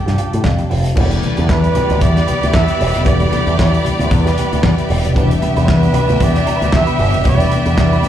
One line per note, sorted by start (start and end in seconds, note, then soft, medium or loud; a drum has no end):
0.00 0.92 C3 medium
0.00 0.93 F3 medium
0.00 0.93 G3 medium
0.00 0.94 D4 medium
0.00 0.67 G4 medium
0.00 0.93 G4 medium
0.00 0.93 D5 medium
0.00 0.93 G5 medium
0.00 0.92 A5 medium
0.06 0.15 G2 medium
0.06 0.16 C4 medium
0.06 0.17 F4 medium
0.06 0.18 G4 medium
0.06 snare soft
0.06 closed hi-hat soft
0.17 0.34 C4 medium
0.17 0.33 F4 medium
0.17 0.32 G4 medium
0.17 closed hi-hat medium
0.17 high conga medium
0.33 0.42 A2 medium
0.33 muted clean electric guitar stroke soft
0.33 closed hi-hat soft
0.44 0.63 F2 medium
0.44 muted clean electric guitar stroke soft
0.44 kick loud
0.44 snare loud
0.44 clap medium
0.44 muted conga soft
0.44 high conga medium
0.58 muted clean electric guitar stroke medium
0.58 closed hi-hat soft
0.70 0.90 F1 medium
0.70 0.85 C4 medium
0.70 0.85 F4 medium
0.70 0.84 G4 medium
0.70 open hi-hat medium
0.70 muted conga soft
0.85 0.95 C4 soft
0.85 0.96 F4 medium
0.85 0.96 G4 medium
0.85 closed hi-hat medium
0.96 1.15 E1 loud
0.96 3.02 D3 medium
0.96 3.02 E3 medium
0.96 3.03 G3 medium
0.96 1.17 B3 medium
0.96 5.12 B3 loud
0.96 3.03 B3 medium
0.96 1.11 D4 medium
0.96 3.03 E4 medium
0.96 5.12 G4 loud
0.96 5.12 G4 medium
0.96 1.10 G4 medium
0.96 5.12 D5 loud
0.96 8.08 D5 medium
0.96 8.08 E5 medium
0.96 5.12 B5 medium
0.96 kick loud
0.96 crash loud
0.96 low conga medium
1.11 muted clean electric guitar stroke soft
1.11 closed hi-hat medium
1.23 muted clean electric guitar stroke soft
1.23 closed hi-hat soft
1.23 high conga medium
1.37 1.46 E2 medium
1.37 1.52 B3 medium
1.37 1.52 D4 medium
1.37 1.51 G4 medium
1.37 closed hi-hat soft
1.49 1.68 E2 medium
1.49 2.03 B4 loud
1.49 kick loud
1.49 snare loud
1.49 clap medium
1.49 muted conga soft
1.64 muted clean electric guitar stroke soft
1.64 closed hi-hat soft
1.75 1.96 B3 medium
1.75 1.90 D4 medium
1.75 1.89 G4 loud
1.75 closed hi-hat medium
1.75 muted conga soft
1.75 high conga medium
1.75 low conga medium
1.89 1.98 D2 loud
1.89 muted clean electric guitar stroke medium
1.89 closed hi-hat soft
1.89 low conga medium
2.01 2.20 E2 loud
2.01 2.56 D5 loud
2.01 muted clean electric guitar stroke soft
2.01 kick loud
2.01 closed hi-hat medium
2.01 high conga medium
2.16 muted clean electric guitar stroke soft
2.16 snare soft
2.16 closed hi-hat soft
2.27 2.42 B3 medium
2.27 2.42 D4 medium
2.27 2.41 G4 medium
2.27 closed hi-hat medium
2.27 muted conga soft
2.27 high conga medium
2.42 2.51 D2 medium
2.42 2.53 B3 medium
2.42 2.53 D4 medium
2.42 2.54 G4 medium
2.42 closed hi-hat soft
2.53 2.64 E2 loud
2.53 3.06 E5 loud
2.53 kick loud
2.53 snare loud
2.53 clap medium
2.53 muted conga soft
2.53 high conga medium
2.67 2.79 B3 medium
2.67 2.79 D4 medium
2.67 2.80 G4 medium
2.67 closed hi-hat medium
2.80 2.91 E1 loud
2.80 muted clean electric guitar stroke soft
2.80 open hi-hat medium
2.94 3.03 F1 medium
2.94 muted clean electric guitar stroke soft
2.94 closed hi-hat medium
3.05 3.25 E1 loud
3.05 5.11 D3 medium
3.05 5.12 E3 medium
3.05 5.12 G3 medium
3.05 3.30 B3 medium
3.05 5.12 B3 medium
3.05 3.31 D4 medium
3.05 5.13 E4 medium
3.05 3.31 G4 medium
3.05 3.55 D5 loud
3.05 kick loud
3.05 closed hi-hat medium
3.05 muted conga soft
3.05 low conga medium
3.20 closed hi-hat soft
3.31 muted clean electric guitar stroke soft
3.31 closed hi-hat medium
3.31 muted conga soft
3.31 high conga medium
3.46 3.55 E2 loud
3.46 3.57 B3 medium
3.46 3.58 D4 medium
3.46 3.58 G4 medium
3.46 closed hi-hat soft
3.58 3.78 E2 medium
3.58 4.08 D5 loud
3.58 muted clean electric guitar stroke soft
3.58 kick loud
3.58 snare loud
3.58 clap medium
3.58 muted conga soft
3.73 3.84 B3 medium
3.73 3.84 D4 medium
3.73 3.85 G4 medium
3.73 closed hi-hat soft
3.85 muted clean electric guitar stroke soft
3.85 closed hi-hat medium
3.85 muted conga soft
3.85 high conga medium
3.85 low conga medium
3.99 4.08 D2 medium
3.99 muted clean electric guitar stroke medium
3.99 closed hi-hat soft
3.99 low conga medium
4.06 4.14 C5 medium
4.11 4.30 E2 loud
4.11 4.90 B4 loud
4.11 muted clean electric guitar stroke soft
4.11 kick loud
4.11 closed hi-hat medium
4.11 muted conga soft
4.11 high conga medium
4.26 4.37 B3 medium
4.26 4.38 D4 medium
4.26 4.38 G4 medium
4.26 snare soft
4.26 closed hi-hat medium
4.38 4.54 B3 medium
4.38 4.52 D4 medium
4.38 4.51 G4 medium
4.38 closed hi-hat medium
4.38 muted conga soft
4.38 high conga medium
4.52 4.61 D2 medium
4.52 muted clean electric guitar stroke medium
4.52 closed hi-hat soft
4.63 4.74 E2 loud
4.63 muted clean electric guitar stroke medium
4.63 kick loud
4.63 snare loud
4.63 clap medium
4.63 high conga medium
4.78 muted clean electric guitar stroke soft
4.78 closed hi-hat soft
4.89 5.00 E1 loud
4.89 5.05 B3 medium
4.89 5.04 D4 medium
4.89 5.04 G4 medium
4.89 open hi-hat medium
4.89 muted conga soft
5.05 5.16 F1 medium
5.05 5.19 B3 medium
5.05 5.14 D4 medium
5.05 5.16 G4 medium
5.05 closed hi-hat medium
5.14 5.35 E1 loud
5.14 7.21 C3 medium
5.14 5.23 D#3 medium
5.14 7.22 G3 medium
5.14 8.08 B3 loud
5.14 8.08 B3 medium
5.14 7.22 B3 medium
5.14 5.36 D4 medium
5.14 7.22 D4 loud
5.14 5.30 E4 loud
5.14 8.08 G4 loud
5.14 5.29 B4 medium
5.14 8.08 E5 loud
5.14 8.08 G5 medium
5.14 kick loud
5.14 closed hi-hat medium
5.14 low conga medium
5.22 7.23 E3 medium
5.30 muted clean electric guitar stroke soft
5.30 closed hi-hat medium
5.42 muted clean electric guitar stroke soft
5.42 closed hi-hat medium
5.42 muted conga soft
5.42 high conga medium
5.57 5.65 E2 medium
5.57 5.72 D4 medium
5.57 5.71 E4 medium
5.57 5.71 B4 medium
5.57 closed hi-hat soft
5.64 5.72 C5 medium
5.68 5.87 E2 medium
5.68 6.25 B4 loud
5.68 kick loud
5.68 snare loud
5.68 clap medium
5.68 muted conga soft
5.83 muted clean electric guitar stroke soft
5.83 closed hi-hat soft
5.93 6.14 D4 loud
5.93 6.09 E4 loud
5.93 6.08 B4 loud
5.93 closed hi-hat medium
5.93 muted conga soft
5.93 high conga medium
5.93 low conga medium
6.08 6.18 D2 loud
6.08 muted clean electric guitar stroke medium
6.08 closed hi-hat soft
6.08 low conga medium
6.19 6.39 E2 loud
6.19 6.78 D5 loud
6.19 muted clean electric guitar stroke soft
6.19 kick loud
6.19 closed hi-hat medium
6.19 muted conga soft
6.19 high conga medium
6.34 muted clean electric guitar stroke soft
6.34 snare soft
6.34 closed hi-hat medium
6.46 6.61 D4 loud
6.46 6.60 E4 medium
6.46 6.59 B4 medium
6.46 closed hi-hat medium
6.46 muted conga soft
6.46 high conga medium
6.60 6.70 D2 medium
6.60 6.71 D4 soft
6.60 6.72 E4 medium
6.60 6.72 B4 medium
6.60 closed hi-hat soft
6.72 6.83 E2 loud
6.72 muted clean electric guitar stroke soft
6.72 kick loud
6.72 snare loud
6.72 clap medium
6.72 high conga medium
6.76 7.27 E5 loud
6.87 6.97 D4 medium
6.87 6.98 E4 medium
6.87 6.98 B4 medium
6.87 closed hi-hat medium
6.98 7.09 G1 loud
6.98 muted clean electric guitar stroke soft
6.98 open hi-hat medium
6.98 muted conga soft
7.13 7.22 F1 medium
7.13 muted clean electric guitar stroke medium
7.13 closed hi-hat medium
7.24 7.44 E1 loud
7.24 8.08 C3 medium
7.24 8.08 E3 medium
7.24 8.08 G3 medium
7.24 8.08 B3 medium
7.24 7.49 D4 medium
7.24 8.08 D4 medium
7.24 7.50 E4 medium
7.24 7.50 B4 medium
7.24 kick loud
7.24 closed hi-hat medium
7.24 muted conga soft
7.24 low conga medium
7.28 7.75 D5 loud
7.40 closed hi-hat medium
7.51 muted clean electric guitar stroke soft
7.51 closed hi-hat medium
7.51 high conga medium
7.66 7.74 E2 medium
7.66 7.77 D4 medium
7.66 7.77 E4 medium
7.66 7.78 B4 medium
7.66 closed hi-hat soft
7.78 7.96 E2 medium
7.78 8.08 D5 loud
7.78 muted clean electric guitar stroke soft
7.78 kick loud
7.78 snare loud
7.78 clap medium
7.78 muted conga soft
7.93 8.03 D4 medium
7.93 8.04 E4 medium
7.93 8.04 B4 medium
7.93 closed hi-hat soft
8.03 muted clean electric guitar stroke soft
8.03 closed hi-hat medium
8.03 muted conga soft
8.03 high conga medium
8.03 low conga medium